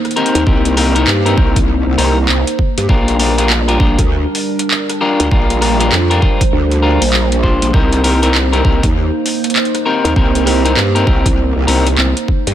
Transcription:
Already playing: A#3 D#4 C5, impact
0.05 cross-stick, closed hi-hat
0.11 closed hi-hat
0.16 C4 D#4 G4 A#4, closed hi-hat
0.26 closed hi-hat
0.35 D#2, closed hi-hat
0.46 C2 C4 D#4 G4 A#4, kick
0.65 closed hi-hat
0.77 C4 D#4 G4 A#4, cross-stick, open hi-hat
0.95 C4 D#4 G4 A#4, closed hi-hat
1.07 G2, clap
1.26 C4 D#4 G4 A#4, closed hi-hat
1.37 C2 C4 D#4 G4 A#4, kick
1.56 kick, closed hi-hat
1.87 C2
1.98 C2 C4 D#4 G4 A#4, open hi-hat
2.29 C2, clap
2.47 closed hi-hat
2.59 kick
2.78 G2, closed hi-hat
2.89 A#1 G3 D4 F4 G4 A#4, kick
3.08 closed hi-hat
3.19 D4 F4 G4 A#4, open hi-hat
3.38 D4 F4 G4 A#4, closed hi-hat
3.50 clap
3.68 D4 F4 G4 A#4, closed hi-hat
3.80 A#1 D4 F4 G4 A#4, kick
3.99 D2, kick, closed hi-hat
4.35 open hi-hat
4.59 closed hi-hat
4.71 clap
4.90 cross-stick, closed hi-hat
5.01 D4 F4 G4 A#4
5.20 D2, closed hi-hat
5.31 A#1 D4 F4 G4 A#4 C5, kick
5.50 closed hi-hat
5.61 D4 F4 G4 A#4, cross-stick, open hi-hat
5.80 D4 F4 G4 A#4, closed hi-hat
5.92 F2, clap
6.10 D4 F4 G4 A#4, closed hi-hat
6.22 D4 F4 G4 A#4, kick
6.41 kick, closed hi-hat
6.53 D2
6.71 closed hi-hat
6.82 D4 F4 G4 A#4
7.02 A#1, closed hi-hat, open hi-hat
7.13 clap
7.32 closed hi-hat
7.43 D4 F4 G4 C5, kick
7.62 A#1, closed hi-hat
7.73 C2 A#3 C4 D#4 G4 A#4 C5, kick
7.92 closed hi-hat
8.04 C4 D#4 G4 A#4, open hi-hat
8.22 C4 D#4 G4 A#4, closed hi-hat
8.35 clap
8.53 C4 D#4 G4 A#4, closed hi-hat
8.64 C2 C4 D#4 G4 A#4, kick
8.83 D#2, kick, closed hi-hat
9.26 open hi-hat
9.44 closed hi-hat
9.50 closed hi-hat
9.56 clap, closed hi-hat
9.65 closed hi-hat
9.75 cross-stick, closed hi-hat
9.86 C4 D#4 G4 A#4
10.04 D#2, closed hi-hat
10.16 C2 C4 D#4 G4 A#4, kick
10.35 closed hi-hat
10.46 C4 D#4 G4 A#4, cross-stick, open hi-hat
10.65 C4 D#4 G4 A#4, closed hi-hat
10.77 G2, clap
10.95 C4 D#4 G4 A#4, closed hi-hat
11.07 C2 C4 D#4 G4 A#4, kick
11.26 kick, closed hi-hat
11.56 C2
11.67 C2 C4 D#4 G4 A#4, open hi-hat
11.87 closed hi-hat
11.98 C2, clap
12.17 closed hi-hat
12.28 kick
12.47 G2, closed hi-hat

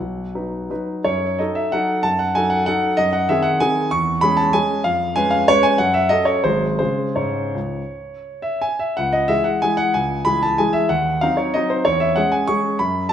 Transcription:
Already playing: F#5
0.00 B1
0.35 F#3 D#4 B4
0.70 F#3 D#4 B4
1.04 F#2 C#5
1.39 F#3 D#4 A4 D#5
1.55 E5
1.72 F#3 D#4 A4 F#5
2.03 F#2 A5
2.19 F#5
2.35 F#3 D#4 A4 G#5
2.50 F#5
2.66 F#3 D#4 A4 F#5
2.97 F#2 D#5
3.13 F#5
3.29 D#3 C4 G#4 E5
3.43 F#5
3.60 D#3 C4 G#4 G#5
3.91 E2 C#6
4.21 G#3 C#4 G#4 B5
4.37 A5
4.53 G#3 C#4 G#4 G#5
4.84 F2 F5
5.16 G#3 C#4 B4 G#5
5.31 F5
5.48 G#3 C#4 B4 C#5
5.63 G#5
5.78 F#2 F#5
5.94 E5
6.09 F#3 C#4 A4 D#5
6.25 C#5
6.44 G#1 F#3 G#3 G#4 C5
6.79 C#3 G#3 G#4 C5
7.16 G#2 C#5
7.55 C#2
8.42 E5
8.61 G#5
8.79 E5
8.97 C#2 F#5
9.13 D#5
9.28 E3 G#3 G#4 E5
9.44 F#5
9.62 E3 G#3 G#4 G#5
9.77 F#5
9.94 C#2 G#5
10.25 E3 G#3 G#4 B5
10.43 A5
10.58 E3 G#3 G#4 G#5
10.73 E5
10.89 D#2 F#5
11.21 F#3 C4 D#4 F5
11.37 C#5
11.54 F#3 C4 D#4 D#5
11.70 C5
11.85 E2 C#5
12.00 E5
12.16 G#3 C#4 G#4 F#5
12.32 G#5
12.47 G#3 C#4 G#4 C#6
12.79 F#2 B5
13.09 A5

